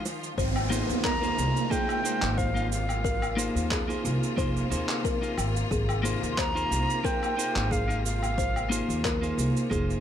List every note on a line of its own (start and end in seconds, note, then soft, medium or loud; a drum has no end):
0.00 0.34 D#3 medium
0.00 0.34 F3 medium
0.00 0.34 F4 loud
0.00 0.39 C6 medium
0.06 high bongo medium
0.06 cabasa medium
0.23 cabasa soft
0.38 0.80 G#1 medium
0.38 10.00 C3 medium
0.38 10.00 A#3 medium
0.38 10.00 F4 medium
0.38 0.57 C5 medium
0.38 kick loud
0.38 downlifter medium
0.38 cabasa soft
0.56 cabasa soft
0.56 low woodblock medium
0.70 1.18 A#3 medium
0.70 1.18 D#4 medium
0.70 1.18 F4 medium
0.70 1.18 G#4 medium
0.70 1.18 C5 loud
0.70 cabasa medium
0.89 1.30 D#2 medium
0.89 cabasa soft
1.04 1.24 A#4 loud
1.04 1.73 A#5 loud
1.04 kick loud
1.04 clap medium
1.04 cabasa soft
1.21 1.67 A#3 medium
1.21 1.67 D#4 medium
1.21 1.67 F4 medium
1.21 1.68 G#4 medium
1.21 1.68 C5 medium
1.21 cabasa soft
1.38 1.50 C2 medium
1.38 cabasa medium
1.57 cabasa soft
1.70 2.00 A#3 medium
1.70 2.01 D#4 medium
1.70 2.01 F4 medium
1.70 2.01 G#4 medium
1.70 2.01 C5 loud
1.70 2.39 G5 loud
1.70 kick loud
1.70 cabasa soft
1.89 cabasa soft
1.89 low woodblock medium
2.04 2.51 A#3 medium
2.04 2.51 D#4 medium
2.04 2.51 F4 medium
2.04 2.52 G#4 medium
2.04 2.52 C5 medium
2.04 cabasa medium
2.22 3.47 G#1 medium
2.22 clap medium
2.22 cabasa soft
2.38 2.57 C5 medium
2.38 2.71 F5 medium
2.38 kick loud
2.38 cabasa soft
2.54 2.69 A#3 medium
2.54 2.69 D#4 medium
2.54 2.69 F4 medium
2.54 2.69 G#4 medium
2.54 2.70 F5 medium
2.54 cabasa soft
2.71 3.67 F5 medium
2.71 cabasa medium
2.89 cabasa soft
2.89 low woodblock medium
3.04 3.24 A#4 loud
3.04 kick loud
3.04 cabasa soft
3.22 cabasa soft
3.22 low woodblock medium
3.37 3.84 A#3 medium
3.37 3.84 D#4 medium
3.37 3.85 F4 medium
3.37 3.85 G#4 medium
3.37 3.85 C5 loud
3.37 cabasa medium
3.55 3.96 D#2 medium
3.55 cabasa soft
3.71 4.01 G#4 medium
3.71 kick loud
3.71 clap medium
3.71 cabasa soft
3.88 4.34 A#3 medium
3.88 4.34 D#4 medium
3.88 4.34 F4 medium
3.88 4.34 G#4 medium
3.88 4.34 C5 medium
3.88 cabasa soft
4.05 4.17 C2 loud
4.05 cabasa medium
4.23 cabasa soft
4.36 4.61 F1 medium
4.36 4.67 A#3 medium
4.36 4.67 D#4 medium
4.36 4.67 F4 medium
4.36 4.68 G#4 medium
4.36 4.57 C5 medium
4.36 4.68 C5 loud
4.36 kick loud
4.36 cabasa soft
4.57 cabasa soft
4.70 4.83 D#2 medium
4.70 5.17 A#3 medium
4.70 5.18 D#4 medium
4.70 5.18 F4 medium
4.70 5.18 G#4 medium
4.70 5.18 C5 medium
4.70 cabasa medium
4.89 clap medium
4.89 cabasa soft
5.04 5.24 A#4 loud
5.04 kick loud
5.04 cabasa soft
5.21 5.35 A#3 medium
5.21 5.36 D#4 medium
5.21 5.36 F4 medium
5.21 5.36 G#4 medium
5.21 5.36 F5 medium
5.21 cabasa soft
5.38 5.61 G#1 medium
5.38 cabasa medium
5.38 low woodblock medium
5.56 cabasa soft
5.71 6.13 G#1 medium
5.71 6.01 G#4 medium
5.71 kick loud
5.71 cabasa soft
5.89 cabasa soft
5.89 low woodblock medium
6.03 6.51 A#3 medium
6.03 6.51 D#4 medium
6.03 6.51 F4 medium
6.03 6.51 G#4 medium
6.03 6.52 C5 loud
6.03 cabasa medium
6.22 6.63 D#2 medium
6.22 cabasa soft
6.32 6.40 C6 medium
6.38 6.57 C5 medium
6.38 7.06 A#5 loud
6.38 kick loud
6.38 clap medium
6.38 cabasa soft
6.55 7.00 A#3 medium
6.55 7.01 D#4 medium
6.55 7.01 F4 medium
6.55 7.01 G#4 medium
6.55 7.01 C5 loud
6.55 cabasa soft
6.71 6.83 C2 medium
6.71 cabasa medium
6.90 cabasa soft
7.03 7.34 A#3 medium
7.03 7.34 D#4 medium
7.03 7.34 F4 medium
7.03 7.34 G#4 medium
7.03 7.24 A#4 loud
7.03 7.35 C5 loud
7.03 7.73 G5 loud
7.03 kick loud
7.03 cabasa soft
7.23 cabasa soft
7.23 low woodblock medium
7.37 7.84 A#3 medium
7.37 7.84 D#4 medium
7.37 7.85 F4 medium
7.37 7.85 G#4 medium
7.37 7.85 C5 medium
7.37 cabasa medium
7.56 8.80 G#1 medium
7.56 clap medium
7.56 cabasa soft
7.71 8.01 G#4 medium
7.71 8.04 F5 medium
7.71 kick loud
7.71 cabasa soft
7.88 8.02 A#3 medium
7.88 8.02 D#4 medium
7.88 8.02 F4 medium
7.88 8.03 G#4 medium
7.88 8.03 F5 medium
7.88 cabasa soft
8.05 9.01 F5 medium
8.05 cabasa medium
8.23 cabasa soft
8.23 low woodblock medium
8.38 8.57 C5 medium
8.38 kick loud
8.38 cabasa soft
8.56 cabasa soft
8.56 low woodblock medium
8.70 9.17 A#3 loud
8.70 9.18 D#4 medium
8.70 9.18 F4 medium
8.70 9.18 G#4 medium
8.70 9.18 C5 loud
8.70 cabasa medium
8.89 9.30 D#2 medium
8.89 cabasa soft
9.04 9.24 A#4 loud
9.04 kick loud
9.04 clap medium
9.04 cabasa soft
9.21 9.67 A#3 loud
9.21 9.67 D#4 medium
9.21 9.67 F4 medium
9.21 9.68 G#4 medium
9.21 9.68 C5 medium
9.21 cabasa soft
9.38 9.50 C2 medium
9.38 cabasa medium
9.57 cabasa soft
9.70 9.94 F1 medium
9.70 10.00 A#3 medium
9.70 10.00 D#4 medium
9.70 10.00 F4 medium
9.70 10.00 G#4 medium
9.70 10.00 C5 medium
9.70 kick loud
9.70 cabasa soft
9.90 cabasa soft